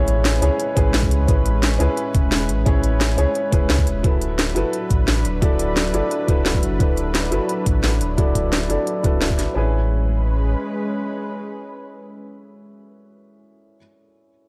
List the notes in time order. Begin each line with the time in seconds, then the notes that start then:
Already playing: A1 G#3 C#4 E4 G#4 B4 C#5, downlifter
0.08 closed hi-hat
0.25 snare, closed hi-hat
0.42 C#2 C#4 E4 G#4 C#5, closed hi-hat
0.60 closed hi-hat
0.75 A1 C#4 E4 G#4 B4, kick, closed hi-hat
0.94 snare, closed hi-hat
1.03 kick
1.11 C#2, closed hi-hat
1.27 A1 C#4 E4 G#4 B4, kick, closed hi-hat
1.46 closed hi-hat
1.63 snare, closed hi-hat
1.79 C#2 C#4 E4 G#4 B4, closed hi-hat
1.97 closed hi-hat
2.15 E1, kick, closed hi-hat
2.32 snare, closed hi-hat
2.49 A1, closed hi-hat
2.66 A1 C#4 E4 G#4 C#5, kick, closed hi-hat
2.83 closed hi-hat
3.01 snare, closed hi-hat
3.17 C#2 C#4 E4 G#4 C#5, closed hi-hat
3.35 closed hi-hat
3.51 E1 C#4 E4 G#4 B4, kick, closed hi-hat
3.70 C#2, snare, closed hi-hat
3.79 kick
3.87 E1, closed hi-hat
4.03 D1 F#3 D4 E4 F#4 A4 B4, kick, closed hi-hat
4.21 closed hi-hat
4.39 snare, closed hi-hat
4.55 F#1 E4 F#4 A4 B4, closed hi-hat
4.73 closed hi-hat
4.90 A1, kick, closed hi-hat
5.08 snare, closed hi-hat
5.25 D1, closed hi-hat
5.42 D1 E4 F#4 A4 D5, kick, closed hi-hat
5.59 closed hi-hat
5.77 snare, closed hi-hat
5.93 F#1 E4 F#4 A4 D5, closed hi-hat
6.11 closed hi-hat
6.27 D1 E4 F#4 A4 B4, kick, closed hi-hat
6.46 snare, closed hi-hat
6.55 kick
6.63 F#1, closed hi-hat
6.79 D1 E4 F#4 A4 B4, kick, closed hi-hat
6.97 closed hi-hat
7.15 snare, closed hi-hat
7.30 F#1 E4 F#4 A4 B4, closed hi-hat
7.49 closed hi-hat
7.66 A1, kick, closed hi-hat
7.84 snare, closed hi-hat
8.01 D1, closed hi-hat
8.17 D1 E4 F#4 A4 D5, kick, closed hi-hat
8.35 kick, closed hi-hat
8.53 snare, closed hi-hat
8.69 F#1 E4 F#4 A4 D5, closed hi-hat
8.87 closed hi-hat
9.03 D1 E4 F#4 A4 B4, kick, closed hi-hat
9.21 snare, closed hi-hat
9.30 kick
9.39 A1, snare, closed hi-hat
9.54 A1 G#3 C#4 E4 G#4 B4